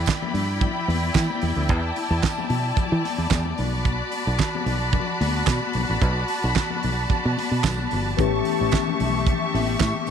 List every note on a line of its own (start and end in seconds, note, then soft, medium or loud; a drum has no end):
0.00 3.55 E4 medium
0.00 8.14 D5 medium
0.00 3.55 G5 medium
0.00 1.67 B5 medium
0.06 kick medium
0.06 snare loud
0.06 clap medium
0.06 closed hi-hat medium
0.06 tambourine medium
0.06 muted conga soft
0.22 high conga medium
0.22 low conga medium
0.34 0.66 G2 medium
0.34 open hi-hat medium
0.34 muted conga soft
0.61 kick loud
0.61 closed hi-hat medium
0.61 muted conga soft
0.61 low conga medium
0.88 1.09 E2 medium
0.88 open hi-hat medium
0.88 muted conga soft
0.88 high conga medium
1.15 1.26 E3 medium
1.15 kick loud
1.15 snare loud
1.15 clap medium
1.15 closed hi-hat medium
1.15 tambourine medium
1.15 muted conga soft
1.30 high conga medium
1.42 1.54 E2 medium
1.42 open hi-hat medium
1.42 muted conga soft
1.42 high conga medium
1.42 low conga medium
1.56 1.70 D2 medium
1.69 1.90 E2 loud
1.69 3.56 A5 medium
1.69 kick loud
1.69 closed hi-hat medium
1.69 muted conga soft
1.96 open hi-hat medium
1.96 muted conga soft
2.10 2.20 E2 loud
2.23 kick loud
2.23 snare loud
2.23 clap medium
2.23 closed hi-hat medium
2.23 tambourine medium
2.23 muted conga soft
2.38 high conga medium
2.38 low conga medium
2.50 2.71 B2 medium
2.50 open hi-hat medium
2.50 muted conga soft
2.77 muted fingered electric bass stroke soft
2.77 kick loud
2.77 closed hi-hat medium
2.77 low conga medium
2.92 3.02 E3 loud
3.05 open hi-hat medium
3.05 muted conga soft
3.05 high conga medium
3.18 3.28 E2 medium
3.31 3.52 E2 medium
3.31 kick loud
3.31 snare loud
3.31 clap medium
3.31 closed hi-hat medium
3.31 tambourine loud
3.45 high conga medium
3.57 4.00 B1 medium
3.57 8.14 F#4 medium
3.57 10.10 A5 medium
3.57 8.14 B5 medium
3.57 open hi-hat medium
3.57 high conga medium
3.57 low conga medium
3.85 kick loud
3.85 closed hi-hat medium
3.85 muted conga soft
4.12 open hi-hat medium
4.12 muted conga soft
4.27 4.37 B1 medium
4.38 kick medium
4.38 snare loud
4.38 clap medium
4.38 closed hi-hat medium
4.38 tambourine medium
4.55 high conga medium
4.55 low conga medium
4.66 4.98 B1 medium
4.66 open hi-hat medium
4.66 muted conga soft
4.93 kick loud
4.93 closed hi-hat medium
4.93 muted conga soft
4.93 low conga medium
5.21 5.42 D2 medium
5.21 open hi-hat medium
5.21 muted conga soft
5.21 high conga medium
5.47 5.59 B2 medium
5.47 kick loud
5.47 snare loud
5.47 clap medium
5.47 closed hi-hat medium
5.47 tambourine loud
5.62 high conga medium
5.73 5.86 B1 medium
5.73 open hi-hat medium
5.73 muted conga soft
5.73 high conga medium
5.73 low conga medium
5.89 5.99 A1 medium
6.02 6.23 B1 loud
6.02 kick loud
6.02 closed hi-hat medium
6.02 muted conga soft
6.28 open hi-hat medium
6.28 muted conga soft
6.44 6.54 B1 medium
6.55 kick medium
6.55 snare loud
6.55 clap medium
6.55 closed hi-hat medium
6.55 tambourine medium
6.55 muted conga soft
6.70 high conga medium
6.70 low conga medium
6.83 7.05 B1 medium
6.83 open hi-hat medium
6.83 muted conga soft
7.10 muted fingered electric bass stroke soft
7.10 kick loud
7.10 closed hi-hat medium
7.10 muted conga soft
7.10 low conga medium
7.25 7.35 B2 medium
7.38 open hi-hat medium
7.38 muted conga soft
7.38 high conga medium
7.51 7.61 B2 medium
7.64 7.85 B1 medium
7.64 kick loud
7.64 snare loud
7.64 clap medium
7.64 closed hi-hat medium
7.64 tambourine loud
7.64 muted conga soft
7.78 high conga medium
7.91 8.13 G1 medium
7.91 open hi-hat medium
7.91 muted conga soft
7.91 high conga medium
7.91 low conga medium
8.17 8.40 A1 loud
8.17 10.10 E3 medium
8.17 10.10 A3 medium
8.17 10.10 B3 medium
8.17 10.10 C#4 medium
8.17 10.10 G4 medium
8.17 10.10 E5 medium
8.17 10.10 C#6 medium
8.17 kick loud
8.17 closed hi-hat medium
8.17 muted conga soft
8.45 open hi-hat medium
8.45 muted conga soft
8.61 8.70 A1 medium
8.71 kick loud
8.71 snare loud
8.71 clap medium
8.71 closed hi-hat medium
8.71 tambourine loud
8.71 muted conga soft
8.88 high conga medium
8.88 low conga medium
9.00 9.32 B1 medium
9.00 open hi-hat medium
9.00 muted conga soft
9.27 kick loud
9.27 closed hi-hat medium
9.27 muted conga soft
9.27 low conga medium
9.54 9.75 A1 medium
9.54 open hi-hat medium
9.54 muted conga soft
9.54 high conga medium
9.80 9.92 A2 medium
9.80 kick loud
9.80 snare loud
9.80 clap medium
9.80 closed hi-hat medium
9.80 tambourine loud
9.80 muted conga soft
9.95 high conga medium
10.07 open hi-hat medium